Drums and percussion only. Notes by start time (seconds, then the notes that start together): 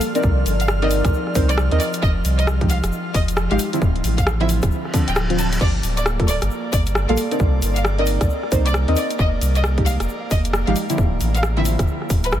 0.01 open hi-hat, shaker
0.15 closed hi-hat, shaker
0.23 kick, shaker
0.46 open hi-hat, shaker
0.60 closed hi-hat, shaker
0.68 cross-stick, shaker
0.82 closed hi-hat
0.91 open hi-hat, shaker
1.05 kick, cross-stick, closed hi-hat, shaker
1.14 shaker
1.27 cross-stick
1.35 kick, open hi-hat, shaker
1.49 closed hi-hat, shaker
1.58 cross-stick, shaker
1.71 closed hi-hat
1.80 open hi-hat, shaker
1.93 closed hi-hat, shaker
2.03 kick, shaker
2.25 open hi-hat, shaker
2.39 closed hi-hat, shaker
2.47 cross-stick, shaker
2.61 kick, closed hi-hat
2.70 open hi-hat, shaker
2.84 cross-stick, closed hi-hat, shaker
2.92 shaker
3.14 kick, open hi-hat, shaker
3.28 closed hi-hat, shaker
3.37 cross-stick, shaker
3.51 closed hi-hat
3.59 open hi-hat, shaker
3.73 closed hi-hat, shaker
3.82 kick, shaker
3.96 closed hi-hat
4.04 open hi-hat, shaker
4.18 kick, closed hi-hat, shaker
4.27 cross-stick, shaker
4.41 closed hi-hat
4.49 open hi-hat, shaker
4.62 kick, cross-stick, closed hi-hat, shaker
4.71 shaker
4.85 cross-stick
4.94 kick, open hi-hat, shaker
5.08 closed hi-hat, shaker
5.16 cross-stick, shaker
5.30 closed hi-hat
5.39 open hi-hat, shaker
5.52 closed hi-hat, shaker
5.61 kick, crash, shaker
5.83 open hi-hat, shaker
5.97 closed hi-hat, shaker
6.06 cross-stick, shaker
6.20 kick, closed hi-hat
6.28 open hi-hat, shaker
6.41 cross-stick, closed hi-hat, shaker
6.51 shaker
6.73 kick, open hi-hat, shaker
6.86 closed hi-hat, shaker
6.95 cross-stick, shaker
7.09 closed hi-hat
7.17 open hi-hat, shaker
7.31 closed hi-hat, shaker
7.39 kick, shaker
7.62 open hi-hat, shaker
7.76 closed hi-hat, shaker
7.85 cross-stick, shaker
7.98 closed hi-hat
8.06 open hi-hat, shaker
8.21 kick, cross-stick, closed hi-hat, shaker
8.30 shaker
8.43 cross-stick
8.52 kick, open hi-hat, shaker
8.66 closed hi-hat, shaker
8.74 cross-stick, shaker
8.88 closed hi-hat
8.96 open hi-hat, shaker
9.10 closed hi-hat, shaker
9.19 kick, shaker
9.41 open hi-hat, shaker
9.55 closed hi-hat, shaker
9.64 cross-stick, shaker
9.78 kick, closed hi-hat
9.86 open hi-hat, shaker
10.00 cross-stick, closed hi-hat, shaker
10.09 shaker
10.31 kick, open hi-hat, shaker
10.45 closed hi-hat, shaker
10.53 cross-stick, shaker
10.67 closed hi-hat
10.76 open hi-hat, shaker
10.90 closed hi-hat, shaker
10.98 kick, shaker
11.21 open hi-hat, shaker
11.35 closed hi-hat, shaker
11.43 cross-stick, shaker
11.57 closed hi-hat
11.65 open hi-hat, shaker
11.79 kick, cross-stick, closed hi-hat, shaker
11.88 shaker
12.02 cross-stick
12.10 kick, open hi-hat, shaker
12.23 closed hi-hat, shaker
12.32 cross-stick, shaker